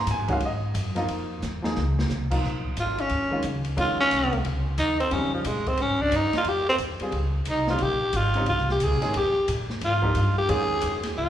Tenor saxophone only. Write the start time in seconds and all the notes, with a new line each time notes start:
2.80 F4
3.01 C#4
3.80 F4
4.00 C#4
4.79 D#4
5.00 C4
5.12 C#4
5.34 F3
5.46 G#3
5.68 C4
5.82 C#4
6.02 D4
6.15 D#4
6.37 F4
6.48 G4
6.69 C4
7.50 D#4
7.70 F4
7.82 G4
8.16 F4
8.49 F4
8.71 G4
8.84 G#4
9.18 G4
9.85 F4
10.38 G4
10.50 G#4
11.18 F4